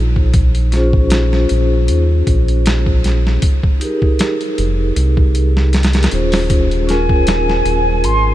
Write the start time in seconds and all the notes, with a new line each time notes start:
Already playing: A#1 D#4 F4 G#4 C5
0.16 kick
0.34 kick, closed hi-hat
0.55 closed hi-hat
0.71 C#4 F4 G#4 C5, snare, closed hi-hat
0.90 C#4, kick
0.96 G#4 C5
1.10 snare, closed hi-hat
1.33 snare
1.49 A#1, closed hi-hat
1.88 D#2, closed hi-hat
2.27 A#1, kick, closed hi-hat
2.48 closed hi-hat
2.66 snare, closed hi-hat
2.86 kick
3.04 snare, closed hi-hat
3.27 snare
3.42 kick, closed hi-hat
3.63 kick
3.80 D#4 G4 G#4, closed hi-hat
3.84 A#4
3.99 D#4 G4, kick
4.04 G#4 A#4
4.19 snare, closed hi-hat
4.41 closed hi-hat
4.58 F1, closed hi-hat
4.96 C2, closed hi-hat
5.17 kick
5.35 closed hi-hat
5.57 snare
5.73 snare, closed hi-hat
5.83 snare, closed hi-hat
5.93 snare, closed hi-hat
6.03 snare, closed hi-hat
6.10 D#1 C#4 F4 G#4, closed hi-hat
6.14 C5
6.32 snare, open hi-hat
6.50 kick, closed hi-hat
6.71 closed hi-hat
6.87 C#4 F4 G#4 A#4 G#5, snare, closed hi-hat
7.06 C#4 F4, kick
7.12 G#4 A#4
7.27 snare, closed hi-hat
7.50 snare
7.65 D#1, closed hi-hat
8.04 G#1 C6, closed hi-hat